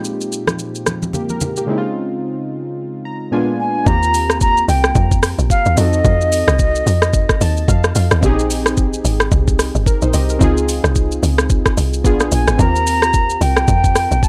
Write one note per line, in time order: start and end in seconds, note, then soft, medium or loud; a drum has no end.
0.00 1.63 A#2 medium
0.00 1.64 G#3 medium
0.00 1.10 C4 medium
0.00 1.14 D#4 medium
0.00 1.11 F4 medium
0.00 1.12 G4 medium
0.04 shaker medium
0.21 shaker medium
0.32 shaker medium
0.47 cross-stick medium
0.47 high conga medium
0.47 shaker soft
0.59 shaker medium
0.75 shaker medium
0.86 cross-stick medium
0.86 high conga medium
0.86 shaker medium
1.02 high conga medium
1.02 shaker medium
1.13 1.29 A#3 medium
1.13 1.29 G4 medium
1.13 low conga medium
1.13 shaker medium
1.29 1.56 A#4 medium
1.29 high conga medium
1.29 shaker medium
1.41 low conga medium
1.41 shaker medium
1.57 1.83 A#3 medium
1.57 1.83 G4 medium
1.57 shaker medium
1.67 3.28 C#3 medium
1.67 3.28 G#3 medium
1.67 3.29 C4 medium
1.67 3.30 D#4 medium
1.71 1.77 E4 medium
1.78 3.32 F4 medium
3.05 3.30 A#5 medium
3.31 3.86 A#2 medium
3.31 3.86 G#3 medium
3.31 3.87 B3 medium
3.31 3.87 D4 medium
3.31 3.87 F4 medium
3.31 3.83 G#5 medium
3.60 3.88 G#5 loud
3.85 4.64 D#2 loud
3.85 5.73 A#3 medium
3.85 5.73 C4 medium
3.85 5.74 F4 medium
3.85 4.41 A#5 loud
3.85 kick loud
3.85 shaker medium
3.89 5.75 G4 medium
4.03 shaker medium
4.14 open hi-hat medium
4.14 shaker loud
4.30 cross-stick medium
4.30 shaker medium
4.41 4.67 A#5 loud
4.41 kick loud
4.41 shaker medium
4.57 shaker medium
4.68 4.93 C2 medium
4.68 5.19 G5 medium
4.68 open hi-hat soft
4.68 shaker medium
4.84 cross-stick loud
4.84 shaker medium
4.95 5.35 F2 loud
4.95 kick loud
4.95 shaker medium
5.11 kick medium
5.11 shaker medium
5.23 cross-stick loud
5.23 open hi-hat medium
5.23 shaker medium
5.39 5.49 A#1 medium
5.39 shaker medium
5.50 5.79 F5 loud
5.50 kick loud
5.50 shaker medium
5.66 5.76 D#2 medium
5.66 shaker medium
5.76 6.02 F2 loud
5.76 7.91 C4 medium
5.76 7.91 D#4 medium
5.76 7.92 F#4 medium
5.76 7.96 D#5 loud
5.76 open hi-hat medium
5.76 shaker loud
5.80 7.93 A4 medium
5.93 shaker medium
6.05 6.44 F2 loud
6.05 kick loud
6.05 shaker medium
6.21 shaker medium
6.32 open hi-hat medium
6.32 shaker loud
6.48 6.83 C2 loud
6.48 cross-stick loud
6.48 shaker medium
6.59 kick loud
6.59 shaker medium
6.75 shaker medium
6.86 7.26 F2 loud
6.86 open hi-hat soft
6.86 shaker medium
7.02 cross-stick loud
7.02 shaker soft
7.13 kick loud
7.13 shaker medium
7.29 kick medium
7.29 cross-stick loud
7.29 shaker medium
7.41 7.66 D#2 loud
7.41 7.67 A5 medium
7.41 open hi-hat medium
7.41 shaker medium
7.57 shaker medium
7.68 7.93 F2 loud
7.68 7.94 F5 medium
7.68 kick loud
7.68 shaker medium
7.84 cross-stick medium
7.84 shaker medium
7.95 8.10 F2 loud
7.95 8.21 F5 medium
7.95 open hi-hat medium
7.95 shaker loud
8.11 8.22 D#2 medium
8.11 cross-stick loud
8.11 shaker medium
8.21 9.01 A#1 loud
8.21 10.09 C4 medium
8.21 8.30 C#4 medium
8.21 9.84 G4 medium
8.21 kick loud
8.21 shaker medium
8.26 9.86 D#4 medium
8.26 9.85 G#4 loud
8.39 shaker medium
8.50 open hi-hat medium
8.50 shaker loud
8.66 cross-stick loud
8.66 shaker medium
8.77 kick loud
8.77 shaker medium
8.93 shaker medium
9.05 9.29 G#1 medium
9.05 open hi-hat soft
9.05 shaker medium
9.20 cross-stick loud
9.20 shaker soft
9.32 9.71 C2 loud
9.32 kick loud
9.32 shaker medium
9.48 kick medium
9.48 shaker medium
9.59 cross-stick medium
9.59 open hi-hat medium
9.59 shaker loud
9.75 9.85 G1 medium
9.75 shaker medium
9.86 10.02 A#4 medium
9.86 kick loud
9.86 shaker medium
10.02 10.13 A#1 loud
10.02 10.14 D#4 medium
10.02 10.13 C5 medium
10.02 shaker medium
10.13 10.38 C2 medium
10.13 10.29 G4 medium
10.13 10.29 D#5 medium
10.13 open hi-hat medium
10.13 shaker loud
10.29 10.56 A#4 medium
10.29 shaker medium
10.39 10.80 C#2 loud
10.39 12.00 C4 medium
10.39 12.01 D#4 medium
10.39 12.02 F4 medium
10.39 kick loud
10.39 shaker medium
10.44 12.03 G#4 loud
10.57 shaker medium
10.69 open hi-hat medium
10.69 shaker loud
10.84 11.19 C2 loud
10.84 cross-stick medium
10.84 shaker medium
10.95 kick loud
10.95 shaker medium
11.12 shaker medium
11.23 11.62 C#2 loud
11.23 open hi-hat soft
11.23 shaker medium
11.38 cross-stick loud
11.38 shaker medium
11.50 kick loud
11.50 shaker medium
11.66 kick medium
11.66 cross-stick loud
11.66 shaker medium
11.77 12.06 C2 medium
11.77 open hi-hat medium
11.77 shaker medium
11.93 shaker medium
12.04 12.29 A#1 loud
12.04 12.59 B3 medium
12.04 12.59 D4 medium
12.04 12.58 F4 medium
12.04 12.60 G#4 medium
12.04 kick loud
12.04 shaker medium
12.20 cross-stick medium
12.20 shaker medium
12.32 12.46 A#1 medium
12.32 12.61 G#5 medium
12.32 open hi-hat medium
12.32 shaker loud
12.48 12.58 G#1 medium
12.48 cross-stick loud
12.48 shaker medium
12.57 13.37 D#2 loud
12.57 14.29 C4 medium
12.57 14.29 F4 medium
12.57 14.29 G4 medium
12.57 13.43 A#5 loud
12.57 kick loud
12.57 shaker medium
12.62 14.29 A#4 medium
12.76 shaker medium
12.87 open hi-hat medium
12.87 shaker loud
13.02 cross-stick loud
13.02 shaker medium
13.13 kick loud
13.13 shaker medium
13.30 shaker medium
13.41 13.66 C2 medium
13.41 14.25 G5 loud
13.41 open hi-hat soft
13.41 shaker medium
13.57 cross-stick loud
13.57 shaker medium
13.68 14.07 F2 loud
13.68 kick loud
13.68 shaker medium
13.84 kick medium
13.84 shaker medium
13.95 cross-stick medium
13.95 open hi-hat medium
13.95 shaker medium
14.11 14.22 A#1 medium
14.11 shaker medium
14.23 14.29 A5 loud
14.23 kick loud
14.23 shaker medium